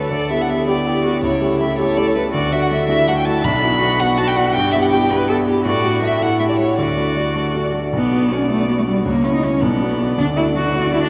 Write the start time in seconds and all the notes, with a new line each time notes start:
Already playing: A3 F#4 A4 B4
0.11 D2 D5
0.30 B3 E4 G4 E5
0.41 F#5
0.48 B3 E4 G4 E5
0.67 B3 E4 G4 D5
0.85 B3 E4 G4
1.04 B3 E4 F#4 G4
1.22 C#2 E4 C#5
1.41 A3 E4 G4
1.60 A3 E4 G4 E5
1.78 A3 E4 G4 A4 C#5
1.97 A3 E4 G4 D5
2.07 C#5
2.15 A3 E4 G4 B4
2.33 D2 F#4 D5
2.52 A3 D4 F#4 E5
2.62 F#5
2.70 A3 D4 F#4 E5
2.88 A3 D4 E4 F#4 E5
3.07 A3 D4 F#4 F#5
3.17 G5
3.25 A3 D4 F#4 A5
3.44 B1 D4 B5
3.62 B3 D4 E4 F#4
3.81 B3 D4 F#4
4.00 B3 D4 F#4 F#5
4.18 B3 D4 F#4 A5
4.28 G5
4.36 B3 D4 F#4 F#5
4.55 G2 G4 G5
4.72 B3 E4 G4 E5
4.82 F#5
4.91 B3 E4 G4 G5
5.10 B3 E4 G4 B4
5.29 B3 E4 G4 A4
5.47 B3 E4 G4
5.65 A2 F#4 D5
5.84 A3 D4 F#4
6.02 A3 D4 F#4 E5
6.21 A2 E4 F#5
6.39 A3 E4 G4 E5
6.49 D5
6.58 A3 E4 G4 C#5
6.78 D2 F#4 D5
6.97 A3 D4 F#4
7.16 A3 D4 F#4
7.35 A3 D4 F#4
7.55 A3 D4 F#4
7.74 A3 D4 F#4
7.92 B1 B3 D5
8.11 B3 D4 F#4
8.30 B3 C#4 D4 F#4
8.49 A3 B3 D4 F#4
8.68 B3 D4 F#4
8.78 A3
8.87 G3 B3 D4 F#4
9.05 C#2 A#3 C#5
9.24 C#4 E4
9.35 D#4
9.43 C#4 E4
9.61 B1 B3 D5
9.81 B3 D4 F#4
10.00 B3 D4 F#4
10.18 D2 D4
10.37 A3 D4 E4 F#4
10.56 A3 D4 F#4
10.74 A3 D4 F#4 D5
10.93 A3 D4 E4 F#4
11.03 D4